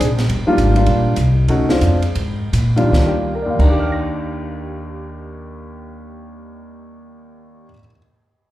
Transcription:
0.00 upright bass A#1, kick, hi-hat pedal, ride
0.18 snare, ride
0.29 upright bass G1, kick, ride
0.47 grand piano G3 A#3 D4 F4, muted upright bass stroke
0.58 upright bass G#1, kick, hi-hat pedal, ride
0.76 grand piano G3 A#3 D4 F4, ride
0.86 upright bass A#1, kick, ride
1.16 upright bass C2, kick, hi-hat pedal, ride
1.48 upright bass D2, grand piano A3 C#4 D#4 F#4, kick, ride
1.69 grand piano G#3 C4 D4 F4, snare
1.81 upright bass F2, kick, hi-hat pedal, ride
2.02 ride
2.15 upright bass G#2, kick, ride
2.53 upright bass A#2, kick, hi-hat pedal, ride
2.76 grand piano D#2 G3 A#3 D4 F4, ride
2.81 grand piano D#2
2.89 upright bass D#2, grand piano D#3, kick
2.93 snare
2.98 grand piano D4
3.06 grand piano G4
3.35 grand piano A#4
3.42 grand piano D#2 D5
3.50 grand piano F5
3.54 grand piano D#3
3.59 upright bass D#2, grand piano A#5, kick, crash
3.63 grand piano D4
3.69 grand piano G4 D6
3.80 grand piano F6
3.92 grand piano A#6

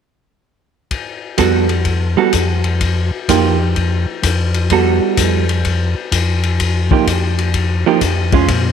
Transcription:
0.91 kick, ride
1.38 tonewheel organ F2, hollow-body jazz guitar G3 B3 F#4 A4, kick, hi-hat pedal, ride
1.69 ride
1.85 kick, ride
2.17 hollow-body jazz guitar G3 B3 F#4 A4
2.33 tonewheel organ F2, kick, hi-hat pedal, ride
2.64 ride
2.81 kick, ride
3.28 tonewheel organ F2, hollow-body jazz guitar F3 A#3 D#4 G4, kick, hi-hat pedal, ride
3.76 kick, ride
4.22 tonewheel organ F2, kick, hi-hat pedal, ride
4.54 ride
4.70 hollow-body jazz guitar G3 B3 F#4 A4, kick, ride
5.17 tonewheel organ F2, kick, hi-hat pedal, ride
5.49 ride
5.65 kick, ride
6.11 tonewheel organ F2, kick, hi-hat pedal, ride
6.43 ride
6.60 kick, ride
6.91 hollow-body jazz guitar F3 A#3 D#4 G4, kick
7.07 tonewheel organ F2, kick, hi-hat pedal, ride
7.38 ride
7.54 kick, ride
7.86 hollow-body jazz guitar F3 A#3 D#4 G4
8.01 tonewheel organ F2, kick, hi-hat pedal, ride
8.32 hollow-body jazz guitar G#3 C#4 F4, kick, ride
8.48 tonewheel organ A#2, kick, ride

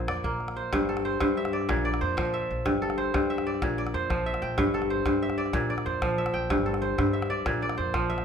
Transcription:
Already playing: kora A#2 C5
0.00 calabash click
0.08 upright bass F2, kora D5, calabash click
0.24 upright bass A#1, kora A#3, calabash thump
0.40 calabash click
0.48 calabash click
0.56 kora C5
0.73 upright bass G1, kora G2, calabash thump, calabash click
0.89 kora A4, calabash click
0.97 calabash click
1.05 kora C5
1.20 kora G2, upright bass G2, calabash thump, calabash click
1.37 kora E5
1.45 calabash click
1.53 kora D5
1.61 calabash click
1.69 upright bass A#1, kora A#2, calabash thump, calabash click
1.85 kora D5
1.94 calabash click
2.01 upright bass F2, kora C5
2.17 upright bass A#1, kora F3, calabash thump, calabash click
2.34 kora E5
2.51 upright bass A#1
2.65 upright bass G1, kora G2, calabash thump, calabash click
2.82 kora A4, calabash click
2.90 calabash click
2.98 kora C5
3.14 kora G2, upright bass G2, calabash thump, calabash click
3.30 kora E5
3.38 calabash click
3.47 kora D5
3.54 calabash click
3.62 upright bass A#1, kora A#2, calabash thump, calabash click
3.78 kora D5
3.87 calabash click
3.94 upright bass F2, kora C5
4.10 upright bass A#1, kora F3, calabash thump, calabash click
4.26 kora E5
4.34 calabash click
4.42 upright bass A#1, kora G5
4.58 upright bass G1, kora G2, calabash thump, calabash click
4.74 kora A4, calabash click
4.82 calabash click
4.90 kora C5
5.06 kora G2, upright bass G2, calabash thump, calabash click
5.22 kora E5
5.30 calabash click
5.38 kora D5
5.46 calabash click
5.53 upright bass A#1, kora A#2, calabash thump, calabash click
5.70 kora D5
5.78 calabash click
5.86 upright bass F2, kora C5
6.02 upright bass A#1, kora F3, calabash thump, calabash click
6.18 kora E5
6.26 calabash click
6.34 upright bass A#1, kora G5
6.50 upright bass G1, kora G2, calabash thump, calabash click
6.66 kora A4
6.74 calabash click
6.82 kora C5
6.98 kora G2, upright bass G2, calabash thump, calabash click
7.07 calabash click
7.13 kora E5, calabash click
7.22 calabash click
7.30 kora D5, calabash click
7.46 upright bass A#1, kora A#2, calabash thump, calabash click
7.62 kora D5, calabash click
7.69 calabash click
7.78 upright bass F2, kora C5
7.94 upright bass A#1, kora F3, calabash thump, calabash click
8.10 kora E5
8.18 calabash click

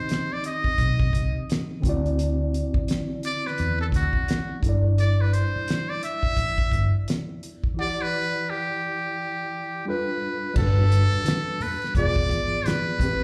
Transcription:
Already playing: tine electric piano D#3 C4 D#4 G4 D#5, muted trumpet C5
0.09 snare, closed hi-hat
0.33 muted trumpet D5
0.44 muted trumpet D#5, closed hi-hat
0.64 kick
0.78 fingered electric bass B1, kick, closed hi-hat
1.00 kick
1.13 fingered electric bass C2, kick, closed hi-hat
1.50 snare, closed hi-hat
1.80 tine electric piano D3 C4, kick
1.85 fingered electric bass D2, tine electric piano E4 F#4, closed hi-hat
1.89 tine electric piano D5
2.06 closed hi-hat
2.19 closed hi-hat
2.54 closed hi-hat
2.74 muted fingered electric bass stroke, kick
2.88 snare, closed hi-hat
3.23 muted trumpet D5, closed hi-hat
3.47 muted trumpet B4, snare
3.58 fingered electric bass E2, closed hi-hat
3.81 muted trumpet A4
3.92 fingered electric bass D2, muted trumpet F#4, kick, closed hi-hat
4.13 kick
4.28 snare, closed hi-hat
4.60 fingered electric bass G1, tine electric piano G3 D4, kick, closed hi-hat
4.64 tine electric piano E4 A4
4.69 tine electric piano D5
4.98 muted trumpet D5, closed hi-hat
5.21 muted trumpet B4
5.33 muted trumpet C5, closed hi-hat
5.56 muted fingered electric bass stroke
5.68 snare, closed hi-hat
5.89 muted trumpet D5
6.03 muted trumpet E5, closed hi-hat
6.23 kick
6.37 fingered electric bass A1, kick, closed hi-hat
6.58 kick
6.72 fingered electric bass G1, kick, closed hi-hat
7.08 snare, closed hi-hat
7.43 closed hi-hat
7.64 kick
7.74 tine electric piano E3 E4
7.79 tine electric piano G4 F#5, muted trumpet D5
7.83 tine electric piano D5
8.02 muted trumpet B4
8.50 muted trumpet G4
9.85 tine electric piano G3 D4 F4 A4, muted trumpet B4
9.90 tine electric piano B4
10.54 fingered electric bass G1, tine electric piano G3 D4, kick, crash, muted conga, low conga
10.58 tine electric piano F#4 A4, muted trumpet A4
10.63 tine electric piano B4
10.78 muted conga, high conga
10.92 closed hi-hat
11.14 muted fingered electric bass stroke
11.24 closed hi-hat, muted conga, high conga
11.28 snare
11.60 muted trumpet B4, open hi-hat, low conga
11.82 snare, closed hi-hat
11.95 fingered electric bass E1, tine electric piano E3 B3 F4 G#4, muted trumpet D5, kick, closed hi-hat, muted conga
11.99 tine electric piano D5
12.16 kick, muted conga
12.29 fingered electric bass G#1, kick, closed hi-hat
12.66 muted trumpet B4, snare, closed hi-hat, muted conga, high conga
12.88 muted conga
12.97 fingered electric bass A1, tine electric piano A2 A3, kick, closed hi-hat, low conga
13.01 tine electric piano C4 G4
13.06 tine electric piano B4

